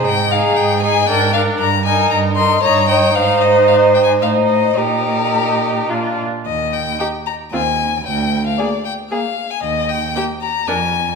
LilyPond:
<<
  \new Staff \with { instrumentName = "Violin" } { \time 3/4 \key ees \major \tempo 4 = 114 g''8 f''8 g''8 aes''8 g''8 f''8 | bes''8 aes''8 bes''8 c'''8 bes''8 g''8 | f''8 ees''8 \tuplet 3/2 { f''8. g''16 aes''8 } f''8 ees''8 | bes'2~ bes'8 r8 |
ees''8 g''8 g''8 bes''8 aes''4 | g''8. f''16 d''8 g''8 f''8. aes''16 | ees''8 g''8 g''8 bes''8 aes''4 | }
  \new Staff \with { instrumentName = "Violin" } { \time 3/4 \key ees \major r8 aes'4 aes'8 bes'8 bes'8 | r8 bes'4 bes'8 des''8 des''8 | c''2 c''4 | g'2 f'8 r8 |
r4 g'4 f'4 | r4 aes'4 aes'4 | r4 g'4 bes'4 | }
  \new Staff \with { instrumentName = "Viola" } { \time 3/4 \key ees \major r8 ees'4 ees'8 d'8 d'8 | r8 ees'4 ees'8 ees'8 ees'8 | ees'2 ees'4 | ees'2 d'8 r8 |
r4 ees'4 c'4 | r4 bes4 bes4 | r4 bes4 d'4 | }
  \new Staff \with { instrumentName = "Cello" } { \clef bass \time 3/4 \key ees \major aes,4 aes,4 aes,4 | g,4 g,4 g,4 | aes,2 a,4 | bes,2 bes,8 r8 |
ees,4 r4 ees,4 | d,4 r2 | ees,4 r4 f,4 | }
>>